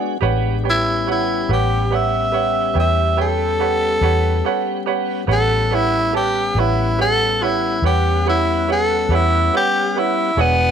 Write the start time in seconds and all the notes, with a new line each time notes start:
Already playing: G#3 B3 D4 F#4 G#4 C#5 D5 F#5
0.21 A1 G#3 B3 D4 G4 B4 C#5 F#5
0.64 G3 B3 C#4 G4 B4 C#5 G5
0.70 E4
1.07 G4 B4 C#5 F#5
1.11 E4
1.49 A1 G4 B4 C#5 F#5
1.91 G4 B4 C#5 F#5
1.95 E5
2.32 G4 B4 C#5 F#5
2.74 E2 G4 B4 C#5 G5
2.80 E5
3.17 G4 B4 C#5 G5
3.21 A4
3.59 G4 B4 C#5 F#5
4.01 E2 G4 B4 C#5 F#5
4.45 G4 B4 C#5 F#5
4.86 G4 B4 C#5 F#5
5.26 A1 G3 B3 C#4 G4 B4 C#5 F#5
5.32 A4
5.71 E4 G4 B4 C#5 F#5
6.13 G4 B4 C#5 A5
6.55 A1 G4 B4 C#5 F#5
6.60 E4
6.99 G4 A4 B4 C#5 F#5
7.42 E4 G4 B4 C#5 F#5
7.82 E2 G4 B4 C#5 F#5
7.86 G4
8.26 E4 G4 B4 C#5 F#5
8.68 G4 A4 B4 C#5 F#5
9.09 E2 G4 B4 C#5 F#5
9.15 E4
9.53 G4 B4 C#5 F#5
9.95 G4 B4 C#5 F#5
9.99 E4
10.36 E1 G#3 B3 D4 F#4 G#4 C#5 D5 F#5
10.41 B3